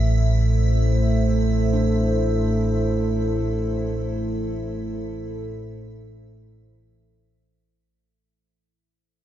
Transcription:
Already playing: A1 A2 C3 A3 A4 C5 E5
0.09 E4
1.73 D4

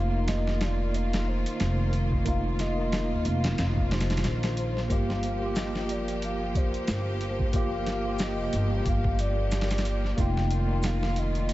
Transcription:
Already playing: F1 D#3 A#3 D#4 F4 F5
0.11 A#3 D#4
0.18 F4
0.28 D#5, snare, closed hi-hat
0.47 snare
0.61 D5, snare, closed hi-hat
0.94 F5, closed hi-hat
1.13 snare, closed hi-hat
1.28 C5
1.46 closed hi-hat
1.60 F1, snare, closed hi-hat
1.93 closed hi-hat
2.12 kick
2.25 A#3 D#4 F4 F5, kick, closed hi-hat
2.59 D#5, snare, closed hi-hat
2.78 A#3 D#4 F4
2.92 snare, closed hi-hat
3.11 D#2
3.25 F1 F5, closed hi-hat
3.44 snare, closed hi-hat
3.58 F1, snare, closed hi-hat
3.77 kick
3.91 C5, snare, closed hi-hat
4.00 snare, closed hi-hat
4.10 snare, closed hi-hat
4.17 snare, closed hi-hat
4.24 A#1, snare, closed hi-hat
4.43 snare, closed hi-hat
4.57 closed hi-hat
4.77 snare
4.89 G1 F3 A#3 F4 G4 F5, kick, closed hi-hat
5.10 snare
5.23 closed hi-hat
5.39 A#3 F4
5.46 G4
5.56 D#5, snare, closed hi-hat, shaker
5.75 snare
5.89 D5, closed hi-hat
6.08 closed hi-hat
6.22 F5, closed hi-hat
6.55 C5, kick, closed hi-hat
6.74 closed hi-hat
6.87 G1, snare, closed hi-hat, shaker
7.21 closed hi-hat
7.39 kick
7.52 A#3 F4 G4 F5, kick, closed hi-hat
7.86 snare, closed hi-hat
8.05 A#3 F4 G4
8.19 D#5, snare, closed hi-hat, shaker
8.39 F1
8.53 G1 D#5, closed hi-hat
8.85 G1 F5, kick, closed hi-hat
9.04 kick
9.19 D5, closed hi-hat
9.52 snare, closed hi-hat, shaker
9.61 snare, closed hi-hat
9.71 snare, closed hi-hat
9.78 snare, closed hi-hat
9.85 closed hi-hat
10.04 snare
10.17 F1 D#3 A#3 D#4 F4 G5, kick, closed hi-hat
10.37 snare
10.51 closed hi-hat
10.67 A#3 D#4
10.73 F4
10.83 F5, snare, closed hi-hat, shaker
11.03 snare
11.16 D#5, closed hi-hat
11.35 closed hi-hat
11.49 closed hi-hat

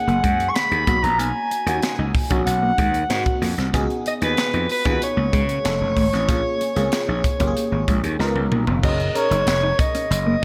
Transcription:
Already playing: A#3 C#4 D#4 G#4 F#5
0.07 F#1 A#3, closed hi-hat
0.23 F#2 G#3, kick, closed hi-hat
0.40 closed hi-hat
0.49 C#6
0.55 B5, muted clean electric guitar stroke, snare, closed hi-hat
0.71 D#2, closed hi-hat
0.87 B1 A#3 C#4 D#4 F#4, kick, closed hi-hat
1.03 A#1 B3 A#5, closed hi-hat
1.18 B1 B3 G#5, closed hi-hat
1.51 muted clean electric guitar stroke, closed hi-hat
1.66 D#2 A#3 C#4 D#4 F#4, closed hi-hat
1.83 snare, closed hi-hat
1.99 C#2 D#4
2.15 muted clean electric guitar stroke, kick, open hi-hat
2.30 A#1 A#3 C#4 D#4 F#4, kick, closed hi-hat
2.46 B1 F#5, muted clean electric guitar stroke, closed hi-hat
2.63 A#3
2.78 D#2 G#3, kick, closed hi-hat
2.94 closed hi-hat
3.09 G#2 A#3 C4 D#4 F#4, muted clean electric guitar stroke, snare, closed hi-hat
3.26 kick, closed hi-hat
3.42 F2 A#3, snare, open hi-hat
3.58 C2 C4, snare, closed hi-hat
3.73 C#2 B3 C#4 D#4 F#4 G#4, kick, closed hi-hat
3.90 closed hi-hat
4.06 D#5, muted clean electric guitar stroke, closed hi-hat
4.21 D#2 B3 D#4 F4 G#4 B4, closed hi-hat
4.28 F#4
4.37 snare, closed hi-hat
4.54 F2 D#4, closed hi-hat
4.69 B4, muted clean electric guitar stroke, open hi-hat
4.85 D#2 B3 C#4 D#4 F4 G#4, kick, closed hi-hat
4.92 F#4
5.01 C#5, muted clean electric guitar stroke, closed hi-hat
5.17 C#2 A#3
5.33 C#3 G#3, kick, closed hi-hat
5.49 closed hi-hat
5.64 F1 A3 C#4 D#4 A4, muted clean electric guitar stroke, snare, closed hi-hat
5.81 F1
5.96 G#1 A3, kick, snare, open hi-hat
6.13 A1 C4, snare, closed hi-hat
6.28 A#1 A#3 C#4 F4 G#4, kick, closed hi-hat
6.61 muted clean electric guitar stroke, closed hi-hat
6.75 C#2 G#3 A#3 C4 F4 G#4, closed hi-hat
6.83 C#4
6.92 snare, closed hi-hat
7.08 A#1 D#4
7.24 muted clean electric guitar stroke, kick, closed hi-hat
7.40 F#1 A#3 C#4 F4 G4, kick, closed hi-hat
7.47 G#4
7.56 muted clean electric guitar stroke, closed hi-hat
7.72 G#1 A#3
7.88 A#1 G#3, kick, closed hi-hat
8.03 D#2, closed hi-hat
8.19 C#2 B3 D#4 F4 A#4, muted clean electric guitar stroke, snare
8.35 C#2, high tom
8.51 B1 A#3, mid tom
8.67 F1 B3, floor tom
8.83 F#1 C#4 D#4 F#4 G#4 A#4 D#5, kick, crash
9.00 closed hi-hat
9.15 C#4 D#4 G#4 A#4 C#5, muted clean electric guitar stroke, closed hi-hat
9.31 F#1 D#4, closed hi-hat
9.47 F1, snare, closed hi-hat
9.63 D#4
9.79 D#5, muted clean electric guitar stroke, kick, closed hi-hat
9.95 C#4, closed hi-hat
10.11 F#1 D#5, muted clean electric guitar stroke, closed hi-hat
10.27 A#3

